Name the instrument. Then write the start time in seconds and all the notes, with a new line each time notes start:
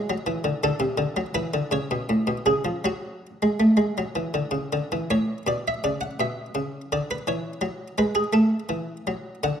harpsichord
Already playing: D5
0.10 F#3
0.27 E3
0.44 D3
0.64 D3 A4
0.80 C3
0.98 D3
1.17 F#3
1.35 E3 B4
1.54 D3
1.71 C#3 C#5
1.91 B2
2.09 A2
2.27 B2
2.46 C#3 G#4
2.65 F3
2.85 F#3 F#4
3.42 G#3
3.60 A3
3.77 G#3
3.98 F#3
4.16 E3
4.34 D3
4.51 C#3
4.73 D3
4.92 E3
5.11 A2 C#5
5.47 B2 D5
5.68 E5
5.84 C#3 D5
6.01 F#5
6.20 B2 E5
6.55 C#3
6.92 D3 D5
7.11 B4
7.27 E3 C#5
7.61 F#3
7.98 G#3 B4
8.15 G#4
8.33 A3 A4
8.69 E3
9.07 F#3
9.43 D3 F#5